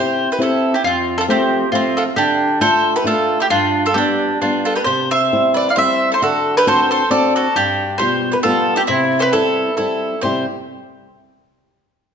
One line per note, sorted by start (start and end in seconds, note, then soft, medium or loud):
0.00 0.31 C4 medium
0.00 0.31 E4 soft
0.00 0.29 G4 medium
0.00 0.31 G4 medium
0.00 0.29 C5 medium
0.32 0.41 G4 medium
0.32 0.42 B4 medium
0.38 0.75 C4 medium
0.38 0.75 E4 medium
0.38 0.73 E4 medium
0.38 0.76 G4 medium
0.43 0.73 A4 medium
0.74 0.85 E4 medium
0.74 0.84 G4 medium
0.84 1.27 F2 medium
0.84 1.17 C4 medium
0.84 1.16 F4 medium
1.18 1.25 F4 medium
1.18 1.23 A4 loud
1.28 1.64 F3 medium
1.28 1.64 A3 medium
1.28 1.64 C4 medium
1.28 1.71 C4 medium
1.28 1.71 G4 medium
1.72 2.08 F3 medium
1.72 2.08 A3 soft
1.72 2.08 C4 medium
1.72 1.96 C4 medium
1.72 1.97 F4 medium
1.97 2.03 F4 medium
1.97 2.02 A4 medium
2.16 2.60 D3 medium
2.16 2.59 D4 medium
2.16 2.58 G4 medium
2.60 2.96 A3 medium
2.60 2.97 D4 soft
2.60 2.97 F4 medium
2.60 2.93 A4 medium
2.60 2.93 C5 loud
2.96 3.05 G4 medium
2.96 3.06 B4 medium
3.04 3.41 A3 medium
3.04 3.41 D4 medium
3.04 3.42 F4 medium
3.04 3.38 F4 medium
3.04 3.39 A4 medium
3.40 3.45 E4 medium
3.40 3.46 G4 medium
3.50 3.94 G2 medium
3.50 3.83 D4 medium
3.50 3.86 F4 loud
3.86 3.95 F4 medium
3.86 3.96 A4 medium
3.94 4.31 G3 soft
3.94 4.32 B3 soft
3.94 4.32 D4 medium
3.94 4.39 D4 medium
3.94 4.37 G4 medium
4.41 4.78 G3 medium
4.41 4.78 B3 soft
4.41 4.64 D4 medium
4.41 4.78 D4 medium
4.41 4.66 F4 medium
4.65 4.75 F4 medium
4.65 4.76 A4 medium
4.76 4.86 G4 medium
4.76 4.84 B4 medium
4.84 5.30 C3 medium
4.84 5.09 G4 medium
4.84 5.10 C5 loud
5.11 5.53 C5 medium
5.11 5.56 E5 loud
5.33 5.68 G3 soft
5.33 5.68 C4 soft
5.33 5.68 E4 medium
5.54 5.68 B4 medium
5.54 5.70 D5 loud
5.69 5.75 D5 soft
5.69 5.77 F5 medium
5.76 6.13 G3 medium
5.76 6.13 C4 soft
5.76 6.13 E4 medium
5.76 6.09 C5 medium
5.76 6.10 E5 medium
6.12 6.21 A4 medium
6.12 6.23 C5 medium
6.22 6.66 D3 medium
6.22 6.54 F#4 medium
6.22 6.55 A4 medium
6.57 6.67 G4 medium
6.57 6.67 B4 loud
6.67 7.02 C4 medium
6.67 7.02 D4 soft
6.67 7.02 F#4 medium
6.67 6.89 A4 medium
6.67 6.90 C5 loud
6.91 7.10 A4 medium
6.91 7.10 C5 medium
7.10 7.46 C4 medium
7.10 7.47 D4 medium
7.10 7.47 F#4 medium
7.10 7.33 A4 medium
7.10 7.35 D5 medium
7.36 7.54 F#4 medium
7.36 7.55 A4 medium
7.56 7.98 G2 medium
7.56 7.97 D4 medium
7.56 7.97 G4 loud
7.98 8.35 B2 medium
7.98 8.35 G3 medium
7.98 8.36 F4 medium
7.98 8.30 G4 medium
7.98 8.33 C5 medium
8.32 8.37 G4 medium
8.32 8.38 B4 medium
8.43 8.80 G3 medium
8.43 8.80 B3 medium
8.43 8.75 F4 medium
8.43 8.80 F4 medium
8.43 8.78 A4 medium
8.76 8.81 E4 medium
8.76 8.82 G4 medium
8.87 9.32 C3 medium
8.87 9.17 C4 medium
8.87 9.20 E4 medium
9.19 9.31 G4 medium
9.19 9.22 A4 soft
9.19 9.32 B4 loud
9.19 9.22 C5 medium
9.33 9.69 G3 medium
9.33 9.69 C4 soft
9.33 9.75 E4 medium
9.33 9.69 E4 medium
9.33 9.74 A4 medium
9.77 10.14 G3 soft
9.77 10.14 C4 soft
9.77 10.19 E4 medium
9.77 10.14 E4 medium
9.77 10.19 A4 medium
10.21 10.44 C3 soft
10.21 10.45 G3 soft
10.21 10.45 C4 soft
10.21 10.45 E4 soft
10.21 10.44 G4 medium
10.21 10.46 G4 medium
10.21 10.44 C5 medium